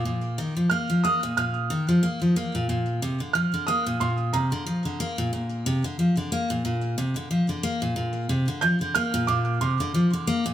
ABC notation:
X:1
M:4/4
L:1/16
Q:"Swing 16ths" 1/4=91
K:Bb
V:1 name="Felt piano"
z4 f'2 e'2 f'6 z2 | z4 f'2 e'2 c'2 b4 z2 | z16 | z4 g'2 f'2 d'2 c'4 z2 |]
V:2 name="Steel-string acoustic guitar" clef=bass
B,,2 E, F, B, F, B, B,, B,,2 E, F, B, F, B, B,, | B,,2 C, D, F, D, B, B,, B,,2 C, D, F, D, B, B,, | B,,2 C, D, F, D, B, B,, B,,2 C, D, F, D, B, B,, | B,,2 C, D, F, D, B, B,, B,,2 C, D, F, D, B, B,, |]